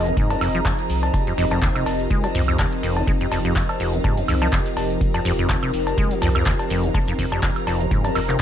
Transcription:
Already playing: F1 F3 C4 D#4 F4 G#4 A#4 D#5 A#5
0.06 D#2, closed hi-hat, shaker
0.17 G#2, kick, closed hi-hat, shaker
0.30 F2, closed hi-hat, cowbell, shaker
0.41 F1 F2, open hi-hat, high woodblock, shaker
0.55 F3, closed hi-hat, shaker
0.65 F2, kick, clap, closed hi-hat, cowbell, shaker
0.79 closed hi-hat, shaker
0.90 C2, open hi-hat, shaker
1.03 closed hi-hat, cowbell, shaker
1.14 G4, kick, closed hi-hat, cowbell, shaker
1.27 F2, closed hi-hat, shaker
1.38 F1 F2, open hi-hat, shaker
1.51 F2, closed hi-hat, cowbell, shaker
1.62 D#2, kick, clap, closed hi-hat, shaker
1.75 C3, closed hi-hat, high woodblock
1.86 F1, open hi-hat, cowbell, shaker
2.00 closed hi-hat, shaker
2.11 G#3, kick, closed hi-hat, shaker
2.24 F3, closed hi-hat, cowbell, shaker
2.35 C2 F2, open hi-hat, shaker
2.48 F2, closed hi-hat, high woodblock, shaker
2.59 D#2, kick, clap, closed hi-hat, cowbell, shaker
2.72 closed hi-hat, shaker
2.83 F1 F2, open hi-hat, shaker
2.97 D#2, closed hi-hat, cowbell, shaker
3.07 G#3, kick, closed hi-hat, shaker
3.21 F2, closed hi-hat, shaker
3.31 F1 F2, open hi-hat, cowbell, shaker
3.45 F2, closed hi-hat, shaker
3.56 F2, kick, clap, closed hi-hat, shaker
3.69 closed hi-hat, cowbell, high woodblock
3.80 F1 F2, open hi-hat, shaker
3.93 D#2, closed hi-hat, shaker
4.04 G#2, kick, closed hi-hat, cowbell, shaker
4.17 F2, closed hi-hat, shaker
4.28 C2 F2, open hi-hat, high woodblock, shaker
4.42 F3, closed hi-hat, cowbell, shaker
4.53 F2, kick, clap, closed hi-hat, shaker
4.66 closed hi-hat, shaker
4.77 F1, open hi-hat, cowbell, shaker
4.90 closed hi-hat, shaker
5.01 kick, closed hi-hat, shaker
5.14 F2, closed hi-hat, cowbell, shaker
5.25 F1 F2, open hi-hat, shaker
5.38 F2, closed hi-hat, shaker
5.49 D#2, kick, clap, closed hi-hat, cowbell, shaker
5.63 C3, closed hi-hat, high woodblock
5.74 F1, open hi-hat, shaker
5.87 closed hi-hat, cowbell, shaker
5.98 G#3, kick, closed hi-hat, shaker
6.11 F3, closed hi-hat, shaker
6.22 C2 F2 A#5, open hi-hat, cowbell, shaker
6.35 F2, closed hi-hat, high woodblock, shaker
6.46 D#2, kick, clap, closed hi-hat, shaker
6.59 closed hi-hat, cowbell, shaker
6.70 F1 F2, open hi-hat, shaker
6.84 D#2, closed hi-hat, shaker
6.94 G#3, kick, closed hi-hat, cowbell, shaker
7.08 F2, closed hi-hat, shaker
7.19 F1 F2, kick, open hi-hat, shaker
7.32 F2, closed hi-hat, cowbell, shaker
7.43 F2, kick, clap, closed hi-hat, shaker
7.56 closed hi-hat, high woodblock, shaker
7.67 F1 F2 D5, open hi-hat, cowbell, shaker
7.80 D#2, closed hi-hat, shaker
7.91 G#2, kick, closed hi-hat, shaker
8.04 F2, closed hi-hat, cowbell, shaker
8.15 F1 F2, open hi-hat, high woodblock, shaker
8.29 C3, clap, closed hi-hat, shaker

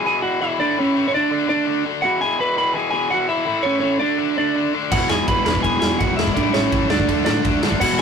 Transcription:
0.04 E2 B2 E3 G#4 G#5
0.22 E2 B2 E3 F#4 F#5
0.40 E2 B2 E3 E4 E5
0.59 A2 E3 A3 D4 D5
0.77 A2 E3 A3 C#4 C#5
0.95 A2 E3 A3
1.08 C#5
1.12 D3 A3 D4 D5
1.17 D4
1.31 D3 A3 D4
1.47 D3 A3 D4 D5
1.66 D3 A3 D4
1.85 D3 A3 D4
2.02 E2 B2 E3 F#4 F#5
2.21 E2 B2 E3 G#4 G#5
2.39 E2 B2 E3 B4 B5
2.56 E2 B2 E3 B4 B5
2.74 E2 B2 E3 G#4 G#5
2.91 E2 B2 E3 G#4 G#5
3.10 E2 B2 E3 F#4 F#5
3.28 E2 B2 E3 E4 E5
3.45 A2 E3 A3
3.63 A2 E3 A3 C#4 C#5
3.80 A2 E3 C#4 C#5
3.84 A3
3.99 D3 A3 D4 D5
4.18 D3 A3 D4
4.36 D3 A3 D4 D5
4.55 D3 A3 D4
4.73 D3 A3 D4
4.91 E1 E2 B2 E3 F#4 F#5, kick, crash
5.09 E1 E2 B2 E3 G#4 G#5, snare
5.28 B1 E2 B2 E3 B4 B5, kick, ride
5.45 E1 E2 B2 E3 B4 B5, snare
5.55 kick
5.63 E1 E2 B2 E3 G#4 G#5, kick, ride
5.79 E1 E2 G#4 G#5, snare
5.83 B2 E3
5.99 E1 E2 B2 E3 F#4 F#5, kick, ride
6.17 E1 E2 B2 E3 E4 E5, snare
6.27 kick
6.34 A1 A2 E3 A3 D4 D5, kick, ride
6.53 A1 A2 E3 A3 C#4 C#5, snare
6.71 A1 A2 E3 A3, kick, ride
6.90 D2 D3 A3 D4 D5, snare
7.00 kick
7.09 D2 D3 A3 D4, kick, ride
7.25 A2 D3 A3 D4 D5, snare
7.44 D2 D3 A3 D4, kick, ride
7.63 D3 A3 D4, snare
7.72 kick
7.80 E1 E2 B2 E3 F#4 F#5, kick, crash
7.98 E2 B2

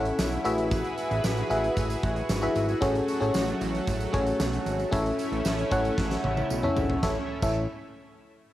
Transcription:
Already playing: A1 A3 C#4 E4 A4 C#5 E5 F#5
0.05 closed hi-hat
0.19 B1, snare, tambourine
0.32 closed hi-hat
0.44 A1 E4 F#4 G#4 B4 E5, closed hi-hat, tambourine
0.58 closed hi-hat
0.71 kick, closed hi-hat, tambourine
0.84 closed hi-hat
0.98 closed hi-hat, tambourine
1.11 A1, closed hi-hat, tambourine
1.24 A1, snare, tambourine
1.37 closed hi-hat
1.49 A1 E4 F#4 G#4 B4 E5, closed hi-hat, tambourine
1.64 closed hi-hat
1.77 A1, kick, closed hi-hat, tambourine
1.90 closed hi-hat, tambourine
2.03 A1, kick, closed hi-hat
2.16 closed hi-hat
2.29 G#1, snare, tambourine
2.42 E4 F#4 G#4 B4 E5, closed hi-hat
2.55 G#1, closed hi-hat, tambourine
2.69 closed hi-hat, tambourine
2.81 A1 F#3 A3 C#4 F#4 G#4 A4 C#5, kick, closed hi-hat, tambourine
2.95 closed hi-hat
3.08 closed hi-hat, tambourine
3.20 A1 C#4 F#4 G#4 A4 C#5, closed hi-hat
3.34 A1, snare, tambourine
3.48 closed hi-hat
3.61 A1, closed hi-hat, tambourine
3.75 closed hi-hat
3.87 A1, kick, closed hi-hat, tambourine
4.00 closed hi-hat, tambourine
4.13 A1 C#4 F#4 G#4 A4 C#5, kick, closed hi-hat
4.26 closed hi-hat, tambourine
4.40 B1, snare, tambourine
4.53 closed hi-hat
4.66 G#1, closed hi-hat, tambourine
4.79 closed hi-hat, tambourine
4.91 A1 A3 C#4 E4 A4 C#5 E5, kick, closed hi-hat, tambourine
5.06 closed hi-hat
5.19 closed hi-hat, tambourine
5.32 A1, closed hi-hat
5.45 A1, snare, tambourine
5.58 closed hi-hat
5.71 A1 C#4 E4 A4 C#5 F#5, kick, closed hi-hat, tambourine
5.85 closed hi-hat, tambourine
5.98 A1, kick, snare, tambourine
6.11 snare, tambourine
6.24 A1, high tom
6.37 high tom, tambourine
6.50 B1, tambourine
6.63 C#4 E4 A4 C#5 E5, mid tom
6.77 G#1, floor tom, tambourine
6.90 floor tom
7.03 A1 A2 A3 C#4 E4 A4 C#5 E5, kick, snare, tambourine
7.42 A1 E4 A4 C#5 E5, kick, crash, tambourine

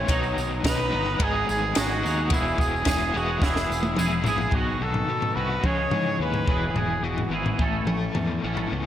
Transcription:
Already playing: C#5
0.08 B1 B2 D#3 F#3 B3 D#4, kick, ride bell, tambourine
0.23 tambourine
0.37 B1, tambourine
0.64 B1 B2 D#3 F#3 B3 D#4, kick, snare, ride bell, tambourine
0.69 B4
0.91 G1 B2 D#3 F#3 B3 D#4
1.19 G#1 G#2 D#3 G#3 B3 D#4 G#4, kick, ride bell
1.23 G#4
1.49 G#1 G#4, tambourine
1.75 G#1 G#2 D#3 G#3 B3 D#4 F#4 G#4, snare, ride bell, tambourine
1.92 tambourine
2.01 D#2 G#2 D#3 G#3 B3 D#4 G#4
2.06 tambourine
2.30 E1 E3 G#3 B3 E4 G#4, kick, ride bell, tambourine
2.48 tambourine
2.58 E1 G#4, kick, tambourine
2.76 tambourine
2.85 E1 E3 G#3 B3 E4 G#4, kick, snare, ride bell, tambourine
3.02 tambourine
3.13 E1 E3 G#3 B3 E4 F#4 G#4, tambourine
3.41 E1 E3 G#3 B3 E4 G#4, kick, snare, tambourine
3.56 snare
3.70 E1, tambourine
3.83 high tom
3.97 E1 E3 G#3 B3 E4 G#4, mid tom, tambourine
4.24 A#1 E3 G#3 B3 E4, floor tom, tambourine
4.28 G#4
4.38 floor tom, tambourine
4.51 B1 B2 D#3 B3 F#4, kick, floor tom
4.55 C#4 F#4
4.81 B1 D#3 A4
4.94 floor tom
5.08 B2 B3
5.22 floor tom
5.36 C2 D#3 B3 C#4 F#4 B4
5.63 C#2 C#3 E3 G#3 C#4 G#4 C#5, kick, mid tom
5.91 G#2 E3, floor tom, mid tom
6.19 D#2 G#3 B4
6.34 floor tom
6.47 E1 E3 B3 E4 G#4, kick
6.74 E1 E3 G#4, floor tom
7.01 E1 E3 F#4
7.18 floor tom
7.29 G#1 E3 B3 E4
7.34 E4 G#4
7.46 floor tom
7.59 A1 E3 A3 B3 C#4 A4, kick
7.85 A1 A4, mid tom
8.15 E2 B3, floor tom, mid tom
8.43 A1 E3 B3 C#4 E4 A4
8.57 floor tom
8.72 C#2 B3

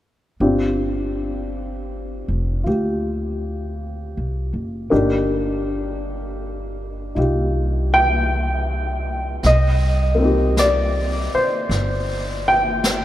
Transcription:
0.40 G1 C4 D4 F4 G4
2.28 F1
2.64 D2 F4 G4
4.17 C2
4.54 F#1
4.90 G1 A#3 D4 D#4 G4
7.15 C2 D#4 F4 G4
7.94 G5
9.43 C2 D#5, brush sweep, snare
10.15 A#3 C4
10.22 D#4 G4
10.57 D5, brush sweep, snare, hi-hat pedal
11.35 C5, muted upright bass stroke
11.69 G1, brush sweep, snare
12.48 G5
12.84 brush sweep, snare, hi-hat pedal

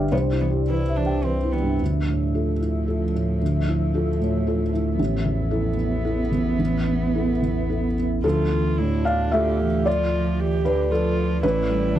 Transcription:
Already playing: G1 G2 D3 D4 G4 B4 D5 E5 F5 G5
0.11 C2 E3 B3 C5 E5
0.31 E4
0.39 E3 B3
0.50 G4
0.69 E3 E4 B4
0.88 E5
0.96 E3 D4
1.06 G5
1.22 E3 C4 B4
1.43 E4
1.52 E3 B3
1.62 G2
1.80 D2 F3 A3 E5
2.08 A2
2.34 F4 A4
2.61 E4
2.88 F4 A4
3.14 A2
3.40 D2
3.67 E4
3.94 F4 A4
4.20 A2
4.47 F4 A4
4.73 E4
4.99 A1 B3 E4
5.25 E2
5.51 E4 A4
5.78 B3
6.05 E4 A4
6.31 E2
6.59 A1
6.87 B3
7.15 E4 A4
7.42 E2
7.69 E4 A4
7.97 B3
8.23 D2 F3 A3 F4 A4 D5
8.50 E3
8.78 A2 D3 E4
9.05 D4 F5
9.32 D3 A3 F4 G4 A4 E5
9.60 E3
9.86 F3 F4 D5
10.14 F3
10.40 E3 G4
10.65 D3 B4
10.91 F3 F4 A4
11.43 A1 E3 E4 B4
11.70 G3
11.95 E2 D4

